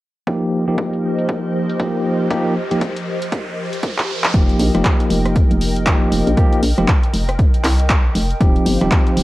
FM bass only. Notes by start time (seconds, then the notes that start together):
4.34 F1
4.59 A#1
4.75 F1
5.10 F1
5.51 F1
6.12 F1
6.27 A#1
6.63 A#1
6.78 F1
7.14 F1
7.64 C2
8.15 F1
8.41 D#1
8.66 G1
8.81 D#1
9.17 D#1